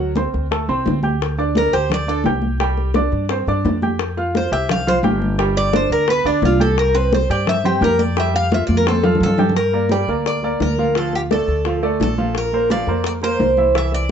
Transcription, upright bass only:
0.00 0.28 D2 loud
0.34 0.66 D2 medium
0.68 0.85 C2 medium
0.86 1.67 D2 loud
1.73 2.22 D2 medium
2.25 3.07 C2 loud
3.12 3.45 G2 medium
3.47 3.63 G2 medium
3.64 4.46 F2 loud
4.51 5.00 C2 medium
5.03 5.85 G1 loud
5.90 6.23 D2 medium
6.25 6.41 D2 medium
6.42 7.24 C2 loud
7.29 7.78 G2 medium
7.81 8.63 F2 loud
8.69 9.17 F2 medium
9.20 10.02 G2 loud
10.08 10.57 D2 medium
10.60 11.42 D2 loud
11.47 11.96 D2 medium
12.00 12.82 A#1 loud
12.87 13.36 F2 medium
13.39 14.11 C2 loud

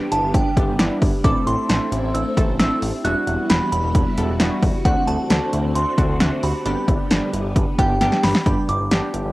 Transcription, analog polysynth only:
0.56 0.73 G3 medium
0.56 0.73 B3 medium
0.56 0.73 D4 medium
0.56 0.73 G4 medium
0.79 1.12 G3 medium
0.79 1.12 B3 medium
0.79 1.12 D4 medium
0.79 1.12 E4 medium
1.24 1.89 A3 medium
1.24 1.89 C4 medium
1.24 1.89 E4 medium
1.24 1.89 A4 medium
2.37 2.53 A3 medium
2.37 2.53 C4 medium
2.37 2.53 E4 medium
2.37 2.53 A4 medium
2.60 2.92 A3 medium
2.60 2.92 C4 medium
2.60 2.92 E4 medium
2.60 2.92 A4 medium
3.05 3.70 G3 medium
3.05 3.70 B3 medium
3.05 3.70 E4 medium
3.05 3.70 F#4 medium
4.18 4.34 G3 medium
4.18 4.34 B3 medium
4.18 4.34 E4 medium
4.18 4.34 A4 medium
4.40 4.73 G3 medium
4.40 4.73 B3 medium
4.40 4.73 E4 medium
4.40 4.73 F#4 loud
4.85 5.50 A3 medium
4.85 5.50 C4 medium
4.85 5.50 D4 medium
4.85 5.50 F#4 medium
5.98 6.14 A3 medium
5.98 6.14 C4 medium
5.98 6.14 D4 medium
5.98 6.14 F#4 medium
6.20 6.53 A3 medium
6.20 6.53 C4 medium
6.20 6.53 D4 medium
6.20 6.53 F#4 medium
6.66 7.31 G3 medium
6.66 7.31 B3 medium
6.66 7.31 D4 medium
6.66 7.31 G4 medium
7.78 7.95 G3 medium
7.78 7.95 B3 medium
7.78 7.95 D4 medium
7.78 7.95 G4 medium
8.01 8.34 G3 medium
8.01 8.34 B3 medium
8.01 8.34 D4 medium
8.01 8.34 G4 loud
8.46 8.79 G3 medium
8.46 8.79 B3 medium
8.46 8.79 D4 medium
8.46 8.79 G4 medium
8.91 9.32 G3 medium
8.91 9.32 B3 medium
8.91 9.32 D4 medium
8.91 9.32 G4 medium

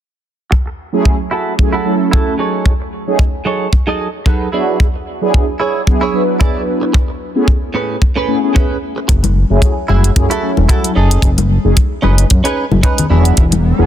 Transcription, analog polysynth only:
0.92 1.16 F#3 medium
0.92 1.16 A3 medium
0.92 1.16 C#4 medium
0.92 1.16 E4 medium
0.92 1.17 G#4 loud
1.58 1.74 F#3 medium
1.58 1.75 A3 medium
1.58 1.75 C#4 medium
1.58 1.75 E4 medium
1.58 1.75 G#4 loud
1.85 2.37 F#3 medium
1.85 2.38 A3 medium
1.85 2.38 C#4 medium
1.85 2.38 E4 medium
1.85 2.38 A4 medium
3.07 3.21 F#3 medium
3.07 3.21 A3 medium
3.07 3.21 C#4 medium
3.07 3.21 D#4 medium
3.07 3.21 G#4 medium
4.53 4.77 F#3 medium
4.53 4.77 B3 medium
4.53 4.77 D4 medium
4.53 4.77 E4 medium
4.53 4.78 F#4 medium
5.21 5.45 F#3 medium
5.21 5.45 B3 medium
5.21 5.45 D4 medium
5.21 5.45 E4 medium
5.21 5.45 G#4 loud
5.87 6.03 F#3 medium
5.87 6.03 B3 medium
5.87 6.03 D4 medium
5.87 6.03 E4 medium
5.87 6.03 G#4 loud
6.13 6.92 F#3 medium
6.13 6.93 B3 medium
6.13 6.93 D4 medium
6.13 6.93 E4 medium
6.13 6.94 B4 medium
7.35 7.49 A3 medium
7.35 7.49 B3 medium
7.35 7.49 C#4 medium
7.35 7.49 E4 medium
7.35 7.49 G#4 medium
8.28 8.39 A3 medium
8.28 8.39 B3 medium
8.28 8.40 C#4 medium
8.28 8.40 E4 medium
8.28 8.40 G#4 medium
8.43 8.66 A3 medium
8.43 8.66 B3 medium
8.43 8.66 C#4 medium
8.43 8.67 E4 medium
8.43 8.67 G#4 medium
9.50 9.73 F#3 medium
9.50 9.73 A3 medium
9.50 9.74 C#4 medium
9.50 9.74 E4 medium
9.50 9.74 G#4 loud
10.15 10.32 F#3 medium
10.15 10.32 A3 medium
10.15 10.32 C#4 medium
10.15 10.32 E4 medium
10.15 10.32 G#4 loud
10.42 10.94 F#3 medium
10.42 10.95 A3 medium
10.42 10.95 C#4 medium
10.42 10.95 E4 medium
11.64 11.78 F#3 medium
11.64 11.78 A3 medium
11.64 11.78 C#4 medium
11.64 11.78 D#4 medium
11.64 11.78 G#4 medium
13.10 13.34 F#3 medium
13.10 13.34 B3 medium
13.10 13.34 D4 medium
13.10 13.34 E4 medium
13.10 13.35 F#4 medium
13.78 13.86 F#3 medium
13.78 13.86 B3 medium
13.78 13.86 D4 medium
13.78 13.86 E4 medium
13.78 13.86 G#4 loud

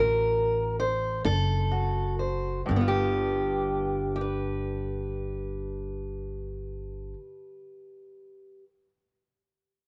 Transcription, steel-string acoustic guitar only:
0.00 0.72 D3 medium
0.00 1.69 F#4 soft
0.00 0.79 A#4 medium
0.80 1.24 C5 medium
1.25 2.07 D4 medium
1.25 2.17 A4 medium
1.71 2.60 F#4 soft
2.19 2.61 C5 soft
2.66 7.13 G2 medium
2.71 7.19 D3 medium
2.76 4.15 B3 medium
2.81 4.19 F4 medium
2.88 4.14 G4 medium
4.16 8.63 G4 medium
4.21 8.69 B4 medium

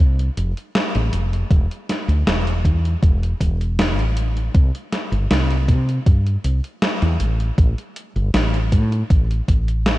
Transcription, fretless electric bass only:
0.00 0.28 C2 medium
0.37 0.52 F1 medium
0.95 1.09 A1 medium
1.12 1.42 F1 medium
1.51 1.66 E1 medium
2.08 2.22 D2 medium
2.26 2.66 E1 medium
2.65 2.94 E2 medium
3.03 3.32 E1 medium
3.41 3.98 E1 medium
3.98 4.48 A1 medium
4.54 4.70 C2 medium
5.12 5.26 G1 medium
5.31 5.70 C2 medium
5.68 5.98 C3 medium
6.06 6.36 G2 medium
6.44 6.60 C2 medium
7.02 7.16 E2 loud
7.20 7.50 A1 medium
7.58 7.74 A1 loud
8.16 8.30 G1 medium
8.34 8.74 A1 medium
8.72 9.02 A2 medium
9.10 9.40 A1 medium
9.48 9.99 A1 medium

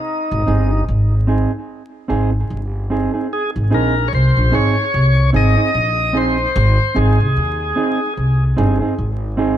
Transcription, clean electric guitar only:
0.46 0.69 C4 medium
0.46 0.70 D#4 medium
0.46 0.70 G#4 medium
1.11 muted clean electric guitar stroke soft
1.27 1.50 C4 medium
1.27 1.51 D#4 medium
1.27 1.51 G#4 medium
2.08 2.31 C4 medium
2.08 2.32 D#4 medium
2.08 2.31 G#4 loud
2.33 muted clean electric guitar stroke medium
2.90 3.13 C4 medium
2.90 3.13 D#4 medium
2.90 3.12 G#4 medium
3.14 3.27 C4 soft
3.14 3.26 D#4 soft
3.14 3.26 G#4 medium
3.70 3.93 C4 medium
3.70 3.94 D#4 medium
3.70 3.94 G#4 medium
4.51 4.74 C4 medium
4.51 4.75 D#4 medium
4.51 4.75 G#4 loud
5.33 5.56 C4 medium
5.33 5.56 D#4 medium
5.33 5.56 G#4 loud
5.57 5.70 C4 medium
5.57 5.69 D#4 medium
5.57 5.69 G#4 medium
6.13 6.36 C4 medium
6.13 6.37 D#4 medium
6.13 6.37 G#4 medium
6.94 7.17 C4 medium
6.94 7.18 D#4 medium
6.94 7.18 G#4 loud
7.76 7.99 C4 medium
7.76 7.99 D#4 medium
7.76 7.99 G#4 medium
8.57 8.79 C4 medium
8.57 8.80 D#4 medium
8.57 8.79 G#4 loud
8.80 8.94 C4 medium
8.80 8.93 D#4 medium
8.80 8.93 G#4 medium
9.37 9.57 C4 medium
9.37 9.57 D#4 loud
9.37 9.57 G#4 loud

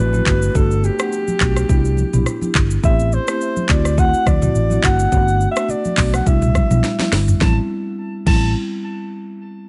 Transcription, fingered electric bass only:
0.00 0.19 A1 medium
0.27 0.48 G1 loud
0.55 0.88 G1 loud
1.41 1.62 B1 medium
1.69 2.02 C2 loud
2.14 2.23 B1 medium
2.55 2.76 G1 loud
2.84 3.17 A1 loud
3.69 4.12 D2 medium
4.27 4.48 D2 medium
4.55 4.76 A1 medium
4.84 5.05 G1 loud
5.12 5.45 G1 loud
5.98 6.19 B1 medium
6.26 6.59 C2 loud
6.71 6.80 B1 medium
7.12 7.33 G1 medium
7.41 7.58 A1 loud
8.27 8.53 A1 loud

